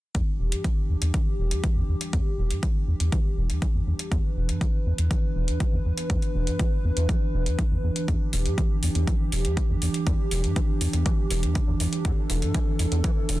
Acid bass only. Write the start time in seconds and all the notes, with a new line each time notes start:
0.15 E2
0.40 E1
0.52 G2
0.64 E3
0.89 E2
1.02 E2
1.14 E3
1.39 E1
1.51 E2
1.64 E3
1.76 E2
1.88 E2
2.13 E2
2.38 E1
2.50 G2
2.63 E3
2.88 E2
3.00 E2
3.12 E3
3.37 E1
3.50 E2
3.62 E3
3.75 E2
3.87 E2
4.12 E2
4.36 E1
4.49 G2
4.61 E3
4.86 E2
4.98 E2
5.11 E3
5.36 E1
5.48 E2
5.60 E3
5.73 E2
5.85 E2
6.10 E2
6.35 E1
6.47 G2
6.60 E3
6.84 E2
6.97 E2
7.09 E3
7.34 E1
7.46 E2
7.59 E3
7.71 E2
7.84 E2
8.08 E2
8.33 E1
8.46 G2
8.58 E3
8.83 E2
8.95 E2
9.07 E3
9.32 E1
9.45 E2
9.57 E3
9.70 E2
9.82 E2
10.07 E2
10.31 E1
10.44 G2
10.56 E3
10.81 E2
10.93 E2
11.06 E3
11.30 E1
11.43 E2
11.55 E3
11.68 E2
11.80 E2
12.05 E2
12.30 E1
12.42 G2
12.55 E3
12.79 E2
12.92 E2
13.04 E3
13.29 E1